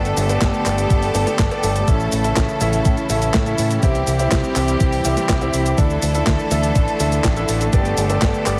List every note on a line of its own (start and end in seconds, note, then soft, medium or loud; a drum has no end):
0.00 0.11 G1 loud
0.00 1.84 D3 medium
0.00 3.79 A3 medium
0.00 0.27 B3 medium
0.00 1.86 B3 medium
0.00 0.26 G4 medium
0.00 1.86 G4 medium
0.00 0.27 A4 medium
0.00 3.79 A4 medium
0.00 0.26 D5 medium
0.05 closed hi-hat soft
0.05 cabasa soft
0.17 0.36 G1 loud
0.17 open hi-hat loud
0.17 cabasa medium
0.29 0.63 B3 medium
0.29 0.63 G4 medium
0.29 0.63 A4 medium
0.29 0.63 D5 medium
0.29 closed hi-hat medium
0.29 cabasa soft
0.41 0.51 G1 loud
0.41 kick loud
0.41 snare loud
0.41 clap loud
0.41 closed hi-hat medium
0.41 cabasa soft
0.54 cabasa soft
0.66 0.84 G1 medium
0.66 1.12 B3 medium
0.66 1.12 G4 medium
0.66 1.12 A4 medium
0.66 1.12 D5 loud
0.66 clap medium
0.66 open hi-hat loud
0.66 cabasa medium
0.78 closed hi-hat medium
0.78 cabasa soft
0.90 1.09 G1 medium
0.90 kick loud
0.90 closed hi-hat medium
0.90 cabasa soft
1.03 open hi-hat medium
1.03 cabasa soft
1.15 1.24 G1 loud
1.15 1.48 B3 medium
1.15 1.48 G4 medium
1.15 1.48 A4 medium
1.15 1.48 D5 medium
1.15 open hi-hat loud
1.15 cabasa medium
1.27 snare soft
1.27 closed hi-hat medium
1.27 cabasa soft
1.39 1.48 G1 loud
1.39 kick loud
1.39 snare loud
1.39 clap medium
1.39 closed hi-hat medium
1.39 cabasa soft
1.51 1.85 B3 medium
1.51 1.85 G4 medium
1.51 1.85 A4 medium
1.51 1.85 D5 loud
1.51 closed hi-hat soft
1.51 cabasa soft
1.63 1.82 G1 loud
1.63 open hi-hat loud
1.63 cabasa medium
1.76 closed hi-hat medium
1.76 cabasa soft
1.88 2.06 A1 loud
1.88 3.81 C#3 medium
1.88 5.74 E3 medium
1.88 2.21 C#4 medium
1.88 2.21 E4 medium
1.88 7.69 E4 medium
1.88 2.21 A4 medium
1.88 2.21 E5 medium
1.88 kick loud
1.88 closed hi-hat medium
1.88 cabasa soft
2.00 cabasa soft
2.12 2.31 A1 medium
2.12 open hi-hat loud
2.12 cabasa medium
2.24 2.58 C#4 medium
2.24 2.58 E4 medium
2.24 2.58 A4 medium
2.24 2.58 E5 medium
2.24 closed hi-hat medium
2.24 cabasa soft
2.37 2.46 A1 medium
2.37 kick loud
2.37 snare loud
2.37 clap medium
2.37 closed hi-hat medium
2.37 cabasa soft
2.49 cabasa soft
2.61 2.80 A1 loud
2.61 3.07 C#4 medium
2.61 3.07 E4 medium
2.61 3.07 A4 medium
2.61 3.07 E5 loud
2.61 open hi-hat loud
2.61 cabasa medium
2.73 closed hi-hat medium
2.73 cabasa soft
2.85 2.95 A2 loud
2.85 kick loud
2.85 closed hi-hat medium
2.85 cabasa soft
2.97 closed hi-hat soft
2.97 cabasa soft
3.10 3.28 A1 medium
3.10 3.44 C#4 medium
3.10 3.44 E4 medium
3.10 3.43 A4 medium
3.10 3.44 E5 medium
3.10 open hi-hat loud
3.10 cabasa medium
3.22 closed hi-hat soft
3.22 cabasa soft
3.34 3.53 A2 loud
3.34 kick loud
3.34 snare loud
3.34 clap medium
3.34 closed hi-hat medium
3.34 cabasa soft
3.46 3.80 C#4 medium
3.46 3.80 E4 medium
3.46 3.80 A4 medium
3.46 3.80 E5 loud
3.46 closed hi-hat soft
3.46 cabasa soft
3.58 3.77 A2 medium
3.58 open hi-hat loud
3.58 cabasa medium
3.71 closed hi-hat medium
3.71 cabasa soft
3.83 4.01 C2 loud
3.83 5.76 C3 medium
3.83 5.76 G3 medium
3.83 4.17 C4 medium
3.83 4.17 E4 medium
3.83 5.76 G4 medium
3.83 4.17 G4 medium
3.83 4.17 E5 medium
3.83 kick loud
3.83 closed hi-hat medium
3.83 cabasa soft
3.95 closed hi-hat soft
3.95 cabasa soft
4.07 4.26 C2 loud
4.07 open hi-hat loud
4.07 cabasa medium
4.19 4.53 C4 medium
4.19 4.53 E4 medium
4.19 4.53 G4 medium
4.19 4.53 E5 medium
4.19 closed hi-hat medium
4.19 cabasa soft
4.32 4.41 C2 loud
4.32 kick loud
4.32 snare loud
4.32 clap medium
4.32 closed hi-hat medium
4.32 cabasa soft
4.44 cabasa soft
4.56 4.75 C2 medium
4.56 5.02 C4 medium
4.56 5.02 E4 medium
4.56 5.02 G4 medium
4.56 5.02 E5 loud
4.56 clap medium
4.56 open hi-hat loud
4.56 cabasa medium
4.68 closed hi-hat medium
4.68 cabasa soft
4.80 4.99 C2 medium
4.80 kick loud
4.80 closed hi-hat medium
4.80 cabasa soft
4.93 open hi-hat medium
4.93 cabasa soft
5.05 5.14 C2 loud
5.05 5.39 C4 medium
5.05 5.39 E4 medium
5.05 5.39 G4 medium
5.05 5.39 E5 medium
5.05 open hi-hat loud
5.05 cabasa medium
5.17 snare soft
5.17 closed hi-hat soft
5.17 cabasa soft
5.29 5.48 C2 medium
5.29 kick loud
5.29 snare loud
5.29 clap medium
5.29 closed hi-hat medium
5.29 cabasa soft
5.41 5.75 C4 medium
5.41 5.75 E4 medium
5.41 5.75 G4 medium
5.41 5.75 E5 loud
5.41 closed hi-hat soft
5.41 cabasa soft
5.54 5.72 C2 medium
5.54 open hi-hat loud
5.54 cabasa medium
5.66 closed hi-hat medium
5.66 cabasa soft
5.78 5.97 D2 loud
5.78 8.60 D3 medium
5.78 7.71 E3 medium
5.78 8.60 A3 medium
5.78 6.12 D4 medium
5.78 6.12 E4 medium
5.78 7.71 A4 medium
5.78 6.12 A4 medium
5.78 6.12 E5 medium
5.78 kick loud
5.78 closed hi-hat medium
5.78 cabasa soft
5.90 cabasa soft
6.02 6.21 D2 medium
6.02 open hi-hat loud
6.02 cabasa medium
6.15 6.48 D4 medium
6.15 6.48 E4 medium
6.15 6.48 A4 medium
6.15 6.48 E5 medium
6.15 closed hi-hat medium
6.15 cabasa soft
6.27 6.36 D2 medium
6.27 kick loud
6.27 snare loud
6.27 clap medium
6.27 closed hi-hat medium
6.27 cabasa soft
6.39 cabasa soft
6.51 6.70 D2 medium
6.51 6.97 D4 medium
6.51 6.97 E4 medium
6.51 6.97 A4 medium
6.51 6.97 E5 loud
6.51 open hi-hat loud
6.51 cabasa medium
6.63 closed hi-hat medium
6.63 cabasa soft
6.75 6.85 A1 loud
6.75 kick loud
6.75 closed hi-hat medium
6.75 cabasa soft
6.88 closed hi-hat soft
6.88 cabasa soft
7.00 7.19 D2 medium
7.00 7.34 D4 medium
7.00 7.34 E4 medium
7.00 7.34 A4 medium
7.00 7.34 E5 medium
7.00 open hi-hat loud
7.00 cabasa medium
7.12 closed hi-hat soft
7.12 cabasa soft
7.24 7.43 A1 loud
7.24 kick loud
7.24 snare loud
7.24 clap medium
7.24 closed hi-hat medium
7.24 cabasa soft
7.36 7.70 D4 medium
7.36 7.70 E4 medium
7.36 7.70 A4 medium
7.36 7.70 E5 loud
7.36 closed hi-hat soft
7.36 cabasa soft
7.49 7.67 A1 medium
7.49 open hi-hat loud
7.49 cabasa medium
7.61 closed hi-hat medium
7.61 cabasa soft
7.73 7.92 G1 loud
7.73 8.60 B3 medium
7.73 8.07 B3 medium
7.73 8.60 G4 medium
7.73 8.07 G4 medium
7.73 8.60 A4 medium
7.73 8.07 A4 medium
7.73 8.07 D5 medium
7.73 kick loud
7.73 closed hi-hat medium
7.73 cabasa soft
7.85 closed hi-hat soft
7.85 cabasa soft
7.97 8.16 G1 loud
7.97 open hi-hat loud
7.97 cabasa medium
8.10 8.43 B3 medium
8.10 8.43 G4 medium
8.10 8.43 A4 medium
8.10 8.43 D5 medium
8.10 closed hi-hat medium
8.10 cabasa soft
8.22 8.31 G1 loud
8.22 kick loud
8.22 snare loud
8.22 clap medium
8.22 closed hi-hat medium
8.22 cabasa soft
8.34 cabasa soft
8.46 8.60 G1 medium
8.46 8.60 B3 medium
8.46 8.60 G4 medium
8.46 8.60 A4 medium
8.46 8.60 D5 loud
8.46 clap medium
8.46 open hi-hat loud
8.46 cabasa medium